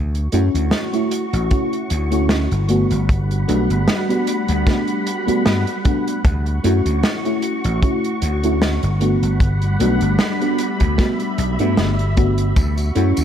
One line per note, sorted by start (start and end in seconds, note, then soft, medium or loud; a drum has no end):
0.00 0.27 D2 loud
0.00 2.66 F#4 medium
0.00 2.66 C#6 medium
0.15 closed hi-hat soft
0.32 0.51 F#2 medium
0.32 0.88 A3 loud
0.32 0.89 C#4 medium
0.32 0.89 E4 medium
0.32 0.89 F#4 loud
0.32 closed hi-hat medium
0.54 0.69 D2 medium
0.54 closed hi-hat medium
0.71 snare loud
0.71 closed hi-hat medium
0.93 1.46 A3 medium
0.93 1.47 C#4 medium
0.93 1.47 E4 medium
0.93 1.47 F#4 medium
0.93 closed hi-hat soft
1.11 closed hi-hat loud
1.33 1.48 A1 loud
1.33 closed hi-hat medium
1.50 2.07 A3 medium
1.50 2.07 C#4 medium
1.50 2.07 E4 medium
1.50 2.07 F#4 medium
1.50 kick loud
1.50 closed hi-hat medium
1.73 closed hi-hat soft
1.90 2.46 D2 loud
1.90 closed hi-hat loud
2.11 2.46 A3 medium
2.11 2.47 C#4 medium
2.11 2.47 E4 medium
2.11 2.47 F#4 medium
2.11 closed hi-hat medium
2.29 snare loud
2.29 closed hi-hat medium
2.51 2.84 G1 medium
2.51 closed hi-hat soft
2.68 6.22 G3 medium
2.68 3.05 A3 medium
2.68 3.05 B3 medium
2.68 3.05 D4 medium
2.68 3.05 F#4 medium
2.68 6.22 F#5 medium
2.68 6.22 B5 medium
2.68 closed hi-hat medium
2.90 3.44 G1 loud
2.90 closed hi-hat medium
3.09 kick loud
3.09 closed hi-hat medium
3.31 closed hi-hat soft
3.48 3.67 B1 medium
3.48 4.04 A3 medium
3.48 4.04 B3 medium
3.48 4.04 D4 medium
3.48 4.05 F#4 loud
3.48 closed hi-hat loud
3.70 3.85 G1 medium
3.70 closed hi-hat medium
3.88 snare loud
3.88 closed hi-hat medium
4.09 4.62 A3 medium
4.09 4.63 B3 medium
4.09 4.63 D4 medium
4.09 4.63 F#4 medium
4.09 closed hi-hat soft
4.27 closed hi-hat loud
4.48 4.64 D2 loud
4.48 closed hi-hat medium
4.66 5.22 A3 medium
4.66 5.23 B3 medium
4.66 5.23 D4 medium
4.66 5.23 F#4 medium
4.66 kick loud
4.66 snare medium
4.66 closed hi-hat medium
4.87 closed hi-hat soft
5.07 closed hi-hat loud
5.27 5.62 A3 medium
5.27 5.62 B3 medium
5.27 5.63 D4 medium
5.27 5.63 F#4 loud
5.27 muted slap bass stroke soft
5.27 closed hi-hat medium
5.45 5.64 G2 medium
5.45 snare loud
5.45 closed hi-hat medium
5.67 closed hi-hat soft
5.84 6.20 A3 medium
5.84 6.21 B3 medium
5.84 6.21 D4 medium
5.84 6.21 F#4 medium
5.84 kick loud
5.84 closed hi-hat loud
6.07 closed hi-hat medium
6.24 6.58 D2 loud
6.24 8.99 F#4 medium
6.24 8.99 C#6 medium
6.24 kick loud
6.24 closed hi-hat medium
6.46 closed hi-hat soft
6.64 6.82 F#2 medium
6.64 7.20 A3 loud
6.64 7.20 C#4 medium
6.64 7.20 E4 medium
6.64 7.21 F#4 loud
6.64 closed hi-hat loud
6.86 7.01 D2 medium
6.86 closed hi-hat medium
7.03 snare loud
7.03 closed hi-hat medium
7.25 7.78 A3 medium
7.25 7.78 C#4 medium
7.25 7.79 E4 medium
7.25 7.79 F#4 medium
7.25 closed hi-hat soft
7.42 closed hi-hat medium
7.64 7.80 A1 loud
7.64 closed hi-hat medium
7.82 8.38 A3 medium
7.82 8.39 C#4 medium
7.82 8.39 E4 medium
7.82 8.39 F#4 medium
7.82 kick loud
7.82 closed hi-hat medium
8.04 closed hi-hat soft
8.22 8.77 D2 loud
8.22 closed hi-hat loud
8.43 8.78 A3 medium
8.43 8.79 C#4 medium
8.43 8.79 E4 medium
8.43 8.79 F#4 loud
8.43 closed hi-hat medium
8.62 snare loud
8.62 closed hi-hat medium
8.83 9.16 G1 medium
8.83 closed hi-hat soft
9.00 12.53 G3 medium
9.00 9.36 A3 medium
9.00 9.37 B3 medium
9.00 9.37 D4 medium
9.00 9.37 F#4 medium
9.00 10.58 F#5 medium
9.00 12.53 B5 medium
9.00 closed hi-hat medium
9.22 9.75 G1 loud
9.22 closed hi-hat medium
9.40 kick loud
9.40 closed hi-hat medium
9.61 closed hi-hat soft
9.79 9.98 B1 medium
9.79 10.36 A3 loud
9.79 10.36 B3 medium
9.79 10.36 D4 medium
9.79 10.36 F#4 loud
9.79 closed hi-hat loud
10.01 10.17 G1 medium
10.01 closed hi-hat medium
10.19 snare loud
10.19 closed hi-hat medium
10.41 10.94 A3 medium
10.41 10.94 B3 medium
10.41 10.95 D4 medium
10.41 10.95 F#4 medium
10.41 closed hi-hat soft
10.58 12.55 E5 medium
10.58 closed hi-hat medium
10.80 10.96 D2 loud
10.80 kick medium
10.80 closed hi-hat medium
10.98 11.54 A3 medium
10.98 11.54 B3 medium
10.98 11.55 D4 medium
10.98 11.55 F#4 medium
10.98 kick loud
10.98 snare medium
10.98 closed hi-hat medium
11.19 closed hi-hat soft
11.38 11.56 B1 medium
11.38 closed hi-hat medium
11.59 11.79 G2 medium
11.59 11.94 A3 medium
11.59 11.94 B3 medium
11.59 11.94 D4 medium
11.59 11.95 F#4 medium
11.59 closed hi-hat medium
11.77 12.52 G1 medium
11.77 snare loud
11.77 closed hi-hat medium
11.99 closed hi-hat soft
12.17 12.52 A3 medium
12.17 12.53 B3 medium
12.17 12.53 D4 medium
12.17 12.53 F#4 medium
12.17 kick loud
12.17 closed hi-hat medium
12.38 closed hi-hat medium
12.56 12.90 D2 loud
12.56 13.24 F#4 medium
12.56 13.24 C#6 medium
12.56 kick loud
12.56 closed hi-hat medium
12.56 tambourine soft
12.78 closed hi-hat soft
12.78 tambourine soft
12.95 13.14 F#2 medium
12.95 13.24 A3 loud
12.95 13.24 C#4 medium
12.95 13.24 E4 medium
12.95 13.24 F#4 loud
12.95 closed hi-hat medium
13.17 13.24 D2 medium
13.17 closed hi-hat medium
13.17 tambourine medium